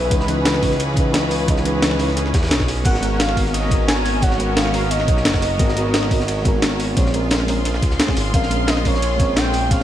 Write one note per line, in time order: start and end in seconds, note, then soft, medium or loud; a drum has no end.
0.00 2.82 E3 medium
0.00 6.93 C#4 medium
0.00 2.81 G#4 medium
0.00 0.97 B4 loud
0.00 2.82 B4 medium
0.10 1.47 C#2 loud
0.10 0.20 E3 medium
0.10 0.21 C#4 medium
0.10 0.21 D#4 medium
0.10 0.22 B4 loud
0.10 kick loud
0.10 closed hi-hat loud
0.10 ride medium
0.20 snare medium
0.27 0.60 E3 loud
0.27 0.60 C#4 medium
0.27 0.61 D#4 medium
0.27 0.61 B4 loud
0.27 closed hi-hat medium
0.27 ride medium
0.45 snare loud
0.45 closed hi-hat loud
0.45 ride medium
0.54 snare soft
0.54 ride soft
0.61 0.72 E3 medium
0.61 0.72 C#4 medium
0.61 0.73 D#4 medium
0.61 0.73 B4 loud
0.61 kick medium
0.61 open hi-hat medium
0.61 ride medium
0.71 snare soft
0.80 closed hi-hat loud
0.80 ride medium
0.94 1.45 E3 medium
0.94 1.46 C#4 medium
0.94 kick loud
0.94 closed hi-hat medium
0.94 ride medium
0.98 1.47 D#4 medium
0.98 1.48 B4 loud
1.14 snare loud
1.14 closed hi-hat loud
1.14 ride medium
1.31 open hi-hat medium
1.31 ride medium
1.47 2.35 C#2 loud
1.47 1.63 E3 medium
1.47 1.63 C#4 medium
1.47 1.64 D#4 medium
1.47 1.64 D#5 loud
1.47 kick loud
1.47 closed hi-hat loud
1.47 ride medium
1.57 snare medium
1.64 1.97 E3 medium
1.64 1.97 C#4 medium
1.64 1.98 D#4 medium
1.64 1.98 B4 loud
1.64 closed hi-hat medium
1.64 ride medium
1.82 snare loud
1.82 closed hi-hat loud
1.82 ride loud
1.91 snare soft
1.98 2.09 E3 loud
1.98 2.09 C#4 medium
1.98 2.10 D#4 medium
1.98 2.10 B4 loud
1.98 open hi-hat medium
1.98 ride medium
2.08 snare soft
2.17 snare soft
2.17 closed hi-hat loud
2.26 snare soft
2.34 2.53 E2 medium
2.34 kick loud
2.34 snare loud
2.34 closed hi-hat medium
2.34 ride medium
2.42 snare loud
2.42 ride medium
2.47 snare medium
2.47 ride medium
2.51 2.84 B1 medium
2.51 snare loud
2.51 closed hi-hat loud
2.51 ride medium
2.60 kick medium
2.60 snare medium
2.68 snare medium
2.68 open hi-hat medium
2.68 ride medium
2.84 4.21 G#1 loud
2.84 2.95 G#3 medium
2.84 2.95 B3 medium
2.84 6.93 B3 medium
2.84 6.93 F#4 medium
2.84 2.96 F#4 medium
2.84 6.93 A#4 medium
2.84 2.96 A#4 loud
2.84 3.11 F#5 loud
2.84 kick loud
2.84 closed hi-hat loud
2.84 crash medium
2.84 ride medium
2.94 snare medium
3.01 3.34 G#3 loud
3.01 3.35 B3 medium
3.01 3.35 F#4 medium
3.01 3.36 A#4 loud
3.01 closed hi-hat medium
3.01 ride medium
3.13 3.21 F#5 medium
3.19 3.53 F5 loud
3.19 snare loud
3.19 closed hi-hat loud
3.19 ride medium
3.29 snare soft
3.29 ride soft
3.35 3.46 G#3 medium
3.35 3.47 B3 medium
3.35 3.47 F#4 medium
3.35 3.48 A#4 loud
3.35 kick medium
3.35 open hi-hat medium
3.35 ride medium
3.46 snare soft
3.54 3.86 D#5 loud
3.54 closed hi-hat loud
3.54 ride medium
3.68 4.19 G#3 loud
3.68 4.20 B3 medium
3.68 kick loud
3.68 closed hi-hat medium
3.68 ride medium
3.72 4.21 F#4 medium
3.72 4.22 A#4 loud
3.88 4.23 G#5 loud
3.88 snare loud
3.88 closed hi-hat loud
3.88 ride medium
4.05 open hi-hat medium
4.05 ride medium
4.05 ride soft
4.21 5.10 G#1 loud
4.21 4.37 G#3 medium
4.21 4.37 B3 medium
4.21 4.38 F#4 medium
4.21 4.38 C#5 loud
4.21 4.55 F#5 loud
4.21 kick loud
4.21 closed hi-hat medium
4.21 ride medium
4.31 snare medium
4.38 4.71 G#3 medium
4.38 4.72 B3 medium
4.38 4.72 F#4 medium
4.38 4.73 A#4 loud
4.38 closed hi-hat medium
4.38 ride soft
4.38 ride medium
4.56 4.92 F5 loud
4.56 snare loud
4.56 closed hi-hat medium
4.56 ride medium
4.66 snare soft
4.72 4.83 G#3 loud
4.72 4.84 B3 medium
4.72 4.84 F#4 medium
4.72 4.85 A#4 loud
4.72 open hi-hat medium
4.72 ride soft
4.72 ride medium
4.90 5.41 D#5 loud
4.90 closed hi-hat loud
4.90 ride medium
5.00 snare soft
5.00 ride soft
5.08 5.27 B1 medium
5.08 kick loud
5.08 closed hi-hat medium
5.08 ride medium
5.17 snare soft
5.25 5.58 F#1 medium
5.25 snare loud
5.25 closed hi-hat loud
5.25 ride medium
5.34 kick medium
5.34 snare medium
5.42 6.41 D#5 loud
5.42 snare medium
5.42 open hi-hat medium
5.42 ride soft
5.42 ride medium
5.58 6.95 G#1 loud
5.58 5.69 G#3 medium
5.58 5.69 B3 medium
5.58 5.70 F#4 medium
5.58 5.70 A#4 loud
5.58 kick loud
5.58 closed hi-hat medium
5.58 ride medium
5.69 snare medium
5.75 6.08 G#3 loud
5.75 6.09 B3 medium
5.75 6.09 F#4 medium
5.75 6.10 A#4 loud
5.75 closed hi-hat medium
5.75 ride medium
5.94 snare loud
5.94 closed hi-hat medium
5.94 ride medium
6.03 snare soft
6.03 ride soft
6.09 6.20 G#3 medium
6.09 6.21 B3 medium
6.09 6.21 F#4 medium
6.09 6.22 A#4 loud
6.09 kick medium
6.09 open hi-hat medium
6.09 ride medium
6.20 snare soft
6.28 closed hi-hat medium
6.28 ride medium
6.42 6.93 G#3 medium
6.42 6.94 B3 medium
6.42 6.95 F#4 medium
6.42 kick loud
6.42 closed hi-hat medium
6.42 ride medium
6.48 6.96 A#4 loud
6.62 snare loud
6.62 closed hi-hat medium
6.62 ride medium
6.80 open hi-hat medium
6.80 ride soft
6.80 ride medium
6.95 7.84 A#1 loud
6.95 7.11 G#3 medium
6.95 7.12 C4 medium
6.95 7.12 C#4 medium
6.95 9.83 F4 medium
6.95 9.83 G#4 medium
6.95 7.13 C#5 loud
6.95 9.83 C6 medium
6.95 kick loud
6.95 closed hi-hat medium
6.95 ride medium
7.06 snare medium
7.12 7.45 G#3 medium
7.12 7.46 C4 medium
7.12 7.46 C#4 medium
7.12 7.47 A#4 loud
7.12 closed hi-hat medium
7.12 ride medium
7.31 snare loud
7.31 closed hi-hat medium
7.31 ride medium
7.40 snare soft
7.47 7.57 G#3 loud
7.47 7.58 C4 medium
7.47 7.58 C#4 medium
7.47 7.59 A#4 loud
7.47 open hi-hat medium
7.47 ride medium
7.65 snare soft
7.65 closed hi-hat medium
7.65 ride medium
7.74 snare soft
7.74 ride soft
7.82 7.98 C#2 medium
7.82 kick loud
7.82 closed hi-hat medium
7.82 ride medium
7.91 snare medium
8.00 snare loud
8.00 closed hi-hat medium
8.00 ride medium
8.07 8.17 G#3 loud
8.07 8.18 C4 medium
8.07 8.18 C#4 medium
8.07 8.19 G#4 loud
8.07 kick medium
8.07 snare medium
8.07 snare soft
8.17 8.32 G#1 loud
8.17 snare medium
8.17 open hi-hat medium
8.17 ride soft
8.17 ride medium
8.33 9.70 A#1 loud
8.33 8.43 G#3 medium
8.33 8.44 C4 medium
8.33 8.44 C#4 medium
8.33 8.45 A#4 loud
8.33 8.70 F5 loud
8.33 kick loud
8.33 closed hi-hat medium
8.33 ride medium
8.43 snare medium
8.49 8.83 G#3 medium
8.49 8.83 C4 medium
8.49 8.84 C#4 medium
8.49 8.84 A#4 loud
8.49 closed hi-hat medium
8.49 ride medium
8.68 8.87 D#5 loud
8.68 snare loud
8.68 closed hi-hat medium
8.68 ride medium
8.77 snare soft
8.77 ride soft
8.84 8.94 G#3 medium
8.84 8.95 C4 medium
8.84 8.95 C#4 medium
8.84 8.96 A#4 loud
8.84 9.38 C#5 loud
8.84 kick medium
8.84 open hi-hat medium
8.84 ride medium
8.95 snare medium
9.02 closed hi-hat medium
9.02 ride medium
9.02 ride loud
9.16 9.67 G#3 medium
9.16 9.68 C4 medium
9.16 kick loud
9.16 closed hi-hat medium
9.16 ride medium
9.21 9.70 C#4 medium
9.21 9.71 A#4 loud
9.36 9.71 G5 loud
9.36 snare loud
9.36 closed hi-hat loud
9.36 ride medium
9.53 open hi-hat medium
9.53 ride medium
9.53 ride soft
9.69 9.83 A#1 loud
9.69 9.83 G#3 medium
9.69 9.83 C4 medium
9.69 9.83 C#4 medium
9.69 9.83 C#5 loud
9.69 9.83 F5 loud
9.69 kick loud
9.69 closed hi-hat loud
9.69 ride medium